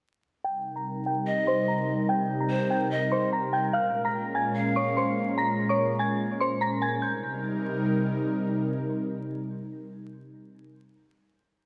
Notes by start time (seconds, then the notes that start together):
0.44 C3 G3 D#4 A#4 G5 G6
0.76 A#5 A#6
1.06 G5 G6
1.27 D#5
1.47 C5 C6
1.68 A#5 A#6
2.09 G5 G6
2.40 A#5 A#6
2.50 C5
2.70 G5 G6
2.91 D#5
3.12 C5 C6
3.33 A#5 A#6
3.53 G5 G6
3.73 A#2 G#3 C#4 F5 F6
4.05 A#5 A#6
4.35 G#5 G#6
4.56 F5
4.76 C#5 C#6
4.97 C5 C6
5.38 A#5 A#6
5.69 C#5 C#6
5.99 G#5 G#6
6.41 C5 C6
6.61 A#5 A#6
6.82 G#5 G#6
7.02 C3 G3 D#4 A#4 G6